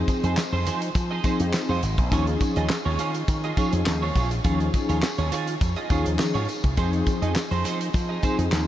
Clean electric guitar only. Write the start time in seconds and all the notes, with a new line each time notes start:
0.09 muted clean electric guitar stroke
0.24 D#4 G#4 C5
0.38 muted clean electric guitar stroke
0.53 D#4 G#4 C5
0.66 D#4 G#4 C5
0.82 muted clean electric guitar stroke
0.96 muted clean electric guitar stroke
1.11 D#4 G#4 D#5
1.24 D#4 G#4 C5
1.40 muted clean electric guitar stroke
1.54 muted clean electric guitar stroke
1.69 D#4 G#4 C5
1.83 muted clean electric guitar stroke
1.98 muted clean electric guitar stroke
2.12 F4 G#4 C#5
2.27 muted clean electric guitar stroke
2.41 muted clean electric guitar stroke
2.57 F4 G#4 D#5
2.70 muted clean electric guitar stroke
2.85 F4 G#4 C#5
2.99 F4 G#4 C#5
3.15 muted clean electric guitar stroke
3.29 muted clean electric guitar stroke
3.44 F4 G#4 D#5
3.57 F4 G#4 C#5
3.73 muted clean electric guitar stroke
3.87 muted clean electric guitar stroke
4.02 F4 G#4 C#5
4.15 F4 G#4 C#5
4.31 muted clean electric guitar stroke
4.44 F4 G#4 C#5
4.60 muted clean electric guitar stroke
4.73 muted clean electric guitar stroke
4.89 F4 G#4 C#5
5.03 muted clean electric guitar stroke
5.18 F4 G#4 C#5
5.32 F4 G#4 C#5
5.47 muted clean electric guitar stroke
5.61 muted clean electric guitar stroke
5.77 F4 G#4 D#5
5.90 F4 G#4 C#5
6.06 muted clean electric guitar stroke
6.19 muted clean electric guitar stroke
6.34 F4 G#4 C#5
6.48 muted clean electric guitar stroke
6.64 muted clean electric guitar stroke
6.77 D#4 G#4 C5
6.93 muted clean electric guitar stroke
7.07 muted clean electric guitar stroke
7.22 D#4 G#4 D#5
7.36 muted clean electric guitar stroke
7.51 D#4 G#4 C5
7.65 D#4 G#4 C5
7.80 muted clean electric guitar stroke
7.94 muted clean electric guitar stroke
8.09 D#4 G#4 D#5
8.23 D#4 G#4 C5
8.39 muted clean electric guitar stroke
8.52 muted clean electric guitar stroke